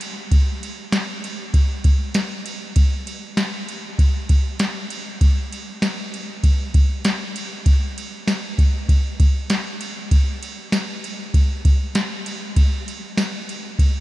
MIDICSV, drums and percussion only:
0, 0, Header, 1, 2, 480
1, 0, Start_track
1, 0, Tempo, 612245
1, 247, Time_signature, 4, 2, 24, 8
1, 10978, End_track
2, 0, Start_track
2, 0, Title_t, "Drums"
2, 7, Note_on_c, 9, 51, 49
2, 86, Note_off_c, 9, 51, 0
2, 247, Note_on_c, 9, 36, 119
2, 247, Note_on_c, 9, 51, 58
2, 325, Note_off_c, 9, 36, 0
2, 326, Note_off_c, 9, 51, 0
2, 494, Note_on_c, 9, 51, 39
2, 572, Note_off_c, 9, 51, 0
2, 725, Note_on_c, 9, 38, 119
2, 727, Note_on_c, 9, 54, 63
2, 729, Note_on_c, 9, 51, 66
2, 803, Note_off_c, 9, 38, 0
2, 806, Note_off_c, 9, 54, 0
2, 807, Note_off_c, 9, 51, 0
2, 972, Note_on_c, 9, 51, 42
2, 1051, Note_off_c, 9, 51, 0
2, 1205, Note_on_c, 9, 36, 91
2, 1206, Note_on_c, 9, 51, 47
2, 1284, Note_off_c, 9, 36, 0
2, 1285, Note_off_c, 9, 51, 0
2, 1445, Note_on_c, 9, 51, 42
2, 1447, Note_on_c, 9, 36, 88
2, 1523, Note_off_c, 9, 51, 0
2, 1525, Note_off_c, 9, 36, 0
2, 1681, Note_on_c, 9, 51, 62
2, 1682, Note_on_c, 9, 54, 65
2, 1684, Note_on_c, 9, 38, 109
2, 1759, Note_off_c, 9, 51, 0
2, 1761, Note_off_c, 9, 54, 0
2, 1763, Note_off_c, 9, 38, 0
2, 1926, Note_on_c, 9, 51, 48
2, 2004, Note_off_c, 9, 51, 0
2, 2162, Note_on_c, 9, 51, 59
2, 2165, Note_on_c, 9, 36, 110
2, 2241, Note_off_c, 9, 51, 0
2, 2243, Note_off_c, 9, 36, 0
2, 2407, Note_on_c, 9, 51, 39
2, 2485, Note_off_c, 9, 51, 0
2, 2643, Note_on_c, 9, 38, 108
2, 2646, Note_on_c, 9, 54, 66
2, 2647, Note_on_c, 9, 51, 72
2, 2722, Note_off_c, 9, 38, 0
2, 2724, Note_off_c, 9, 54, 0
2, 2726, Note_off_c, 9, 51, 0
2, 2890, Note_on_c, 9, 51, 39
2, 2968, Note_off_c, 9, 51, 0
2, 3125, Note_on_c, 9, 36, 91
2, 3128, Note_on_c, 9, 51, 49
2, 3204, Note_off_c, 9, 36, 0
2, 3207, Note_off_c, 9, 51, 0
2, 3366, Note_on_c, 9, 51, 45
2, 3367, Note_on_c, 9, 36, 86
2, 3444, Note_off_c, 9, 51, 0
2, 3446, Note_off_c, 9, 36, 0
2, 3602, Note_on_c, 9, 51, 67
2, 3604, Note_on_c, 9, 54, 59
2, 3606, Note_on_c, 9, 38, 106
2, 3681, Note_off_c, 9, 51, 0
2, 3682, Note_off_c, 9, 54, 0
2, 3684, Note_off_c, 9, 38, 0
2, 3845, Note_on_c, 9, 51, 49
2, 3923, Note_off_c, 9, 51, 0
2, 4085, Note_on_c, 9, 36, 114
2, 4085, Note_on_c, 9, 51, 57
2, 4164, Note_off_c, 9, 36, 0
2, 4164, Note_off_c, 9, 51, 0
2, 4332, Note_on_c, 9, 51, 37
2, 4410, Note_off_c, 9, 51, 0
2, 4564, Note_on_c, 9, 38, 118
2, 4566, Note_on_c, 9, 54, 70
2, 4568, Note_on_c, 9, 51, 71
2, 4642, Note_off_c, 9, 38, 0
2, 4645, Note_off_c, 9, 54, 0
2, 4646, Note_off_c, 9, 51, 0
2, 4812, Note_on_c, 9, 51, 38
2, 4891, Note_off_c, 9, 51, 0
2, 5045, Note_on_c, 9, 36, 89
2, 5046, Note_on_c, 9, 51, 53
2, 5123, Note_off_c, 9, 36, 0
2, 5124, Note_off_c, 9, 51, 0
2, 5286, Note_on_c, 9, 51, 45
2, 5287, Note_on_c, 9, 36, 98
2, 5365, Note_off_c, 9, 51, 0
2, 5366, Note_off_c, 9, 36, 0
2, 5524, Note_on_c, 9, 51, 65
2, 5525, Note_on_c, 9, 54, 66
2, 5527, Note_on_c, 9, 38, 112
2, 5602, Note_off_c, 9, 51, 0
2, 5604, Note_off_c, 9, 54, 0
2, 5606, Note_off_c, 9, 38, 0
2, 5769, Note_on_c, 9, 51, 53
2, 5847, Note_off_c, 9, 51, 0
2, 6005, Note_on_c, 9, 36, 110
2, 6005, Note_on_c, 9, 51, 56
2, 6083, Note_off_c, 9, 51, 0
2, 6084, Note_off_c, 9, 36, 0
2, 6254, Note_on_c, 9, 51, 40
2, 6333, Note_off_c, 9, 51, 0
2, 6488, Note_on_c, 9, 38, 117
2, 6490, Note_on_c, 9, 54, 69
2, 6492, Note_on_c, 9, 51, 70
2, 6566, Note_off_c, 9, 38, 0
2, 6569, Note_off_c, 9, 54, 0
2, 6570, Note_off_c, 9, 51, 0
2, 6730, Note_on_c, 9, 36, 92
2, 6733, Note_on_c, 9, 51, 42
2, 6808, Note_off_c, 9, 36, 0
2, 6811, Note_off_c, 9, 51, 0
2, 6967, Note_on_c, 9, 36, 88
2, 6971, Note_on_c, 9, 51, 46
2, 7046, Note_off_c, 9, 36, 0
2, 7050, Note_off_c, 9, 51, 0
2, 7211, Note_on_c, 9, 36, 94
2, 7211, Note_on_c, 9, 51, 44
2, 7289, Note_off_c, 9, 36, 0
2, 7289, Note_off_c, 9, 51, 0
2, 7446, Note_on_c, 9, 51, 59
2, 7447, Note_on_c, 9, 54, 69
2, 7449, Note_on_c, 9, 38, 124
2, 7524, Note_off_c, 9, 51, 0
2, 7526, Note_off_c, 9, 54, 0
2, 7527, Note_off_c, 9, 38, 0
2, 7689, Note_on_c, 9, 51, 48
2, 7767, Note_off_c, 9, 51, 0
2, 7929, Note_on_c, 9, 36, 105
2, 7929, Note_on_c, 9, 51, 58
2, 8007, Note_off_c, 9, 36, 0
2, 8008, Note_off_c, 9, 51, 0
2, 8174, Note_on_c, 9, 51, 42
2, 8252, Note_off_c, 9, 51, 0
2, 8407, Note_on_c, 9, 38, 118
2, 8410, Note_on_c, 9, 54, 74
2, 8411, Note_on_c, 9, 51, 73
2, 8485, Note_off_c, 9, 38, 0
2, 8488, Note_off_c, 9, 54, 0
2, 8489, Note_off_c, 9, 51, 0
2, 8656, Note_on_c, 9, 51, 41
2, 8735, Note_off_c, 9, 51, 0
2, 8891, Note_on_c, 9, 36, 92
2, 8893, Note_on_c, 9, 51, 50
2, 8969, Note_off_c, 9, 36, 0
2, 8971, Note_off_c, 9, 51, 0
2, 9133, Note_on_c, 9, 36, 90
2, 9133, Note_on_c, 9, 51, 41
2, 9212, Note_off_c, 9, 36, 0
2, 9212, Note_off_c, 9, 51, 0
2, 9369, Note_on_c, 9, 51, 64
2, 9370, Note_on_c, 9, 54, 69
2, 9372, Note_on_c, 9, 38, 111
2, 9447, Note_off_c, 9, 51, 0
2, 9448, Note_off_c, 9, 54, 0
2, 9450, Note_off_c, 9, 38, 0
2, 9613, Note_on_c, 9, 51, 50
2, 9691, Note_off_c, 9, 51, 0
2, 9850, Note_on_c, 9, 36, 109
2, 9851, Note_on_c, 9, 51, 64
2, 9929, Note_off_c, 9, 36, 0
2, 9929, Note_off_c, 9, 51, 0
2, 10098, Note_on_c, 9, 51, 39
2, 10176, Note_off_c, 9, 51, 0
2, 10329, Note_on_c, 9, 38, 120
2, 10332, Note_on_c, 9, 54, 67
2, 10333, Note_on_c, 9, 51, 69
2, 10407, Note_off_c, 9, 38, 0
2, 10410, Note_off_c, 9, 54, 0
2, 10411, Note_off_c, 9, 51, 0
2, 10577, Note_on_c, 9, 51, 40
2, 10656, Note_off_c, 9, 51, 0
2, 10810, Note_on_c, 9, 36, 85
2, 10814, Note_on_c, 9, 51, 51
2, 10888, Note_off_c, 9, 36, 0
2, 10893, Note_off_c, 9, 51, 0
2, 10978, End_track
0, 0, End_of_file